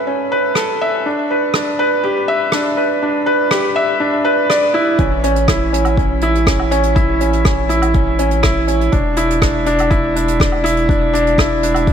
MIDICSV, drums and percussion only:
0, 0, Header, 1, 2, 480
1, 0, Start_track
1, 0, Tempo, 491803
1, 1029, Time_signature, 4, 2, 24, 8
1, 11643, End_track
2, 0, Start_track
2, 0, Title_t, "Drums"
2, 540, Note_on_c, 9, 37, 83
2, 638, Note_off_c, 9, 37, 0
2, 1501, Note_on_c, 9, 37, 96
2, 1598, Note_off_c, 9, 37, 0
2, 2459, Note_on_c, 9, 37, 90
2, 2557, Note_off_c, 9, 37, 0
2, 3425, Note_on_c, 9, 37, 91
2, 3523, Note_off_c, 9, 37, 0
2, 4390, Note_on_c, 9, 37, 80
2, 4488, Note_off_c, 9, 37, 0
2, 4863, Note_on_c, 9, 42, 46
2, 4869, Note_on_c, 9, 36, 105
2, 4961, Note_off_c, 9, 42, 0
2, 4967, Note_off_c, 9, 36, 0
2, 5110, Note_on_c, 9, 42, 81
2, 5208, Note_off_c, 9, 42, 0
2, 5229, Note_on_c, 9, 42, 56
2, 5327, Note_off_c, 9, 42, 0
2, 5348, Note_on_c, 9, 37, 89
2, 5349, Note_on_c, 9, 36, 104
2, 5350, Note_on_c, 9, 42, 52
2, 5446, Note_off_c, 9, 37, 0
2, 5447, Note_off_c, 9, 36, 0
2, 5448, Note_off_c, 9, 42, 0
2, 5600, Note_on_c, 9, 42, 83
2, 5697, Note_off_c, 9, 42, 0
2, 5709, Note_on_c, 9, 77, 59
2, 5710, Note_on_c, 9, 42, 55
2, 5806, Note_off_c, 9, 77, 0
2, 5808, Note_off_c, 9, 42, 0
2, 5831, Note_on_c, 9, 36, 99
2, 5843, Note_on_c, 9, 42, 49
2, 5928, Note_off_c, 9, 36, 0
2, 5941, Note_off_c, 9, 42, 0
2, 6064, Note_on_c, 9, 42, 74
2, 6161, Note_off_c, 9, 42, 0
2, 6200, Note_on_c, 9, 42, 60
2, 6298, Note_off_c, 9, 42, 0
2, 6312, Note_on_c, 9, 36, 106
2, 6313, Note_on_c, 9, 37, 96
2, 6313, Note_on_c, 9, 42, 44
2, 6409, Note_off_c, 9, 36, 0
2, 6411, Note_off_c, 9, 37, 0
2, 6411, Note_off_c, 9, 42, 0
2, 6437, Note_on_c, 9, 77, 64
2, 6535, Note_off_c, 9, 77, 0
2, 6554, Note_on_c, 9, 42, 84
2, 6651, Note_off_c, 9, 42, 0
2, 6669, Note_on_c, 9, 42, 62
2, 6766, Note_off_c, 9, 42, 0
2, 6794, Note_on_c, 9, 36, 114
2, 6794, Note_on_c, 9, 42, 56
2, 6891, Note_off_c, 9, 36, 0
2, 6891, Note_off_c, 9, 42, 0
2, 7032, Note_on_c, 9, 42, 83
2, 7129, Note_off_c, 9, 42, 0
2, 7154, Note_on_c, 9, 42, 51
2, 7252, Note_off_c, 9, 42, 0
2, 7272, Note_on_c, 9, 37, 91
2, 7274, Note_on_c, 9, 36, 113
2, 7276, Note_on_c, 9, 42, 47
2, 7369, Note_off_c, 9, 37, 0
2, 7371, Note_off_c, 9, 36, 0
2, 7374, Note_off_c, 9, 42, 0
2, 7512, Note_on_c, 9, 42, 80
2, 7610, Note_off_c, 9, 42, 0
2, 7632, Note_on_c, 9, 77, 60
2, 7634, Note_on_c, 9, 42, 59
2, 7730, Note_off_c, 9, 77, 0
2, 7732, Note_off_c, 9, 42, 0
2, 7748, Note_on_c, 9, 42, 50
2, 7754, Note_on_c, 9, 36, 108
2, 7846, Note_off_c, 9, 42, 0
2, 7852, Note_off_c, 9, 36, 0
2, 7989, Note_on_c, 9, 42, 79
2, 8087, Note_off_c, 9, 42, 0
2, 8109, Note_on_c, 9, 42, 59
2, 8207, Note_off_c, 9, 42, 0
2, 8222, Note_on_c, 9, 42, 43
2, 8229, Note_on_c, 9, 37, 97
2, 8234, Note_on_c, 9, 36, 106
2, 8320, Note_off_c, 9, 42, 0
2, 8327, Note_off_c, 9, 37, 0
2, 8332, Note_off_c, 9, 36, 0
2, 8470, Note_on_c, 9, 42, 83
2, 8568, Note_off_c, 9, 42, 0
2, 8598, Note_on_c, 9, 42, 56
2, 8695, Note_off_c, 9, 42, 0
2, 8707, Note_on_c, 9, 42, 54
2, 8714, Note_on_c, 9, 36, 112
2, 8805, Note_off_c, 9, 42, 0
2, 8811, Note_off_c, 9, 36, 0
2, 8945, Note_on_c, 9, 42, 86
2, 9043, Note_off_c, 9, 42, 0
2, 9079, Note_on_c, 9, 42, 61
2, 9177, Note_off_c, 9, 42, 0
2, 9188, Note_on_c, 9, 42, 58
2, 9192, Note_on_c, 9, 36, 114
2, 9193, Note_on_c, 9, 37, 92
2, 9286, Note_off_c, 9, 42, 0
2, 9289, Note_off_c, 9, 36, 0
2, 9291, Note_off_c, 9, 37, 0
2, 9430, Note_on_c, 9, 42, 80
2, 9528, Note_off_c, 9, 42, 0
2, 9549, Note_on_c, 9, 42, 60
2, 9565, Note_on_c, 9, 77, 56
2, 9647, Note_off_c, 9, 42, 0
2, 9663, Note_off_c, 9, 77, 0
2, 9671, Note_on_c, 9, 36, 110
2, 9673, Note_on_c, 9, 42, 47
2, 9769, Note_off_c, 9, 36, 0
2, 9770, Note_off_c, 9, 42, 0
2, 9916, Note_on_c, 9, 42, 84
2, 10013, Note_off_c, 9, 42, 0
2, 10033, Note_on_c, 9, 42, 67
2, 10131, Note_off_c, 9, 42, 0
2, 10151, Note_on_c, 9, 36, 108
2, 10152, Note_on_c, 9, 42, 46
2, 10160, Note_on_c, 9, 37, 93
2, 10248, Note_off_c, 9, 36, 0
2, 10250, Note_off_c, 9, 42, 0
2, 10258, Note_off_c, 9, 37, 0
2, 10268, Note_on_c, 9, 77, 56
2, 10365, Note_off_c, 9, 77, 0
2, 10399, Note_on_c, 9, 42, 96
2, 10496, Note_off_c, 9, 42, 0
2, 10509, Note_on_c, 9, 42, 58
2, 10606, Note_off_c, 9, 42, 0
2, 10628, Note_on_c, 9, 36, 111
2, 10641, Note_on_c, 9, 42, 50
2, 10726, Note_off_c, 9, 36, 0
2, 10738, Note_off_c, 9, 42, 0
2, 10878, Note_on_c, 9, 42, 81
2, 10975, Note_off_c, 9, 42, 0
2, 10997, Note_on_c, 9, 42, 53
2, 11094, Note_off_c, 9, 42, 0
2, 11108, Note_on_c, 9, 36, 110
2, 11114, Note_on_c, 9, 42, 47
2, 11115, Note_on_c, 9, 37, 101
2, 11206, Note_off_c, 9, 36, 0
2, 11211, Note_off_c, 9, 42, 0
2, 11213, Note_off_c, 9, 37, 0
2, 11351, Note_on_c, 9, 42, 89
2, 11448, Note_off_c, 9, 42, 0
2, 11463, Note_on_c, 9, 77, 57
2, 11474, Note_on_c, 9, 42, 62
2, 11561, Note_off_c, 9, 77, 0
2, 11571, Note_off_c, 9, 42, 0
2, 11588, Note_on_c, 9, 36, 111
2, 11589, Note_on_c, 9, 42, 47
2, 11643, Note_off_c, 9, 36, 0
2, 11643, Note_off_c, 9, 42, 0
2, 11643, End_track
0, 0, End_of_file